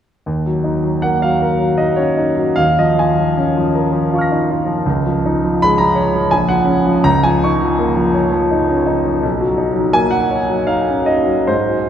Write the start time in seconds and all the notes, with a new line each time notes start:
0.26 D#2
0.46 F#3
0.64 D#4
0.84 F#3
1.02 A#3 F#5
1.22 F#3 F5
1.42 A#4
1.59 F#3
1.78 D#4 D#5
1.96 C#4 C#5
2.17 D#4
2.36 F#3
2.56 D#2 F5
2.79 F3 D#5
2.99 F4 G#5
3.18 F3
3.37 C#4
3.57 F3
3.75 A#4
3.92 F3
4.12 F4 F5 C#6
4.18 F6 A#6
4.32 D#4
4.51 F4
4.66 F3
4.86 C#2
5.06 F3
5.26 D#4
5.44 F3
5.62 G#3 B5
5.78 F3 A#5
5.95 C#5
6.14 F3
6.31 A#1 G#5
6.49 F3 F#5
6.65 C#4
6.86 F3
7.04 C#2 A#5
7.23 F3 G#5
7.44 D#4 C#6
7.62 F3
7.79 A#3
7.96 F3
8.14 C#5
8.32 F3
8.51 D#4
8.70 C#4
8.87 D#4
9.05 F3
9.23 B1
9.40 F#3
9.58 D#4
9.73 F#3
9.93 A#3 G#5
10.10 F#3 F#5
10.30 C#5
10.49 F#3
10.67 D#4 F5
10.90 C#4
11.06 D#4 D#5
11.26 F#3
11.47 G#2 C5
11.69 F#3